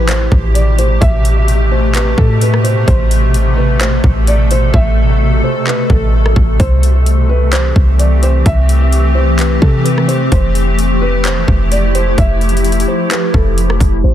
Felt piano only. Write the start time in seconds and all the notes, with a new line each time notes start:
0.08 C5
0.54 D5
0.79 C5
1.01 E5
1.71 C5
1.94 B4
2.18 A4
2.42 B4
2.64 C5
2.87 C5
3.57 B4
3.80 C5
4.28 D5
4.51 C5
4.74 E5
5.44 C5
5.67 B4
5.90 A4
6.60 C5
7.29 B4
7.53 C5
7.99 D5
8.23 C5
8.46 E5
9.15 C5
9.39 B4
9.62 A4
9.85 B4
10.08 C5
10.32 C5
11.02 B4
11.25 C5
11.72 D5
11.95 C5
12.18 E5
12.88 C5
13.10 B4
13.34 A4
14.04 C5